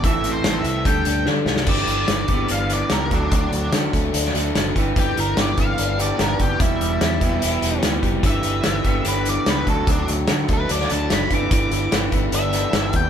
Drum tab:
CC |----------------|x---------------|----------------|----------------|
HH |x-x-x-x-x-x-----|--x-x-x-x-x-x-x-|x-x-x-x-x-x-x-x-|x-x-x-x-x-x-x-x-|
SD |----o-------o-oo|----o-------o---|----o----o--o---|----o-------o---|
BD |o-------o-------|o-----o-------o-|o-----o-------o-|o-----o-------o-|

CC |----------------|----------------|----------------|----------------|
HH |x-x-x-x-x-x-x-x-|x-x-x-x-x-x-x-x-|x-x-x-x-x-x-x-x-|x-x-x-x-x-x-x-x-|
SD |----o-------o---|----o-------o---|----o----o--o---|----o-------o---|
BD |o-----o-------o-|o-----o-------o-|o-----o-------o-|o-----o-------o-|